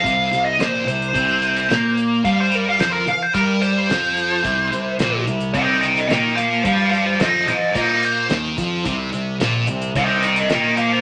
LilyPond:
<<
  \new Staff \with { instrumentName = "Lead electric guitar" } { \time 4/4 \key c \minor \tempo 4 = 109 f''8. ees''16 c''8 c''2 r8 | f''16 c''16 bes'16 f''16 c''16 bes'16 f''16 c''16 bes'8 c''4.~ | c''4. r8 <ees'' g''>8 <ees'' g''>8 <ees'' g''>8 <c'' f''>8 | <c'' f''>8 <c'' f''>8 <c'' ees''>8 <c'' ees''>8 <c'' ees''>8 c''8 r4 |
r2 <ees'' g''>8 <ees'' g''>8 <ees'' g''>8 <c'' f''>8 | }
  \new Staff \with { instrumentName = "Distorted electric guitar" } { \clef bass \time 4/4 \key c \minor c8 c8 bes,8 c8 c4 bes4 | g4 f8 r8 g4 f4 | c8 c8 bes,8 c8 c4 bes4 | g4 f8 r8 bes4 ees8 f8 |
c8 c8 bes,8 c8 c4 bes4 | }
  \new Staff \with { instrumentName = "Picked electric bass" } { \clef bass \time 4/4 \key c \minor c,8 c,8 bes,,8 c,8 c,4 bes,4 | g,4 f,8 r8 g,4 f,4 | c,8 c,8 bes,,8 c,8 c,4 bes,4 | g,4 f,8 r8 bes,4 ees,8 f,8 |
c,8 c,8 bes,,8 c,8 c,4 bes,4 | }
  \new DrumStaff \with { instrumentName = "Drums" } \drummode { \time 4/4 <hh bd>8 hh8 <hh sn>8 hh16 hh16 <hh bd>8 hh16 hh16 <hh sn>8 hh8 | <hh bd>8 hh8 <hh sn>8 hh8 <hh bd>8 hh8 <hh sn>8 hh8 | <hh bd>8 hh8 <hh sn>8 hh16 hh16 <hh bd>8 hh16 hh16 <hh sn>8 <hh sn>8 | <hh bd>8 hh8 <hh sn>8 hh8 <hh bd>8 hh8 <hh sn>8 <hh bd sn>8 |
<hh bd>8 hh8 <hh sn>8 hh16 hh16 <hh bd>8 hh16 hh16 <hh sn>8 hh8 | }
>>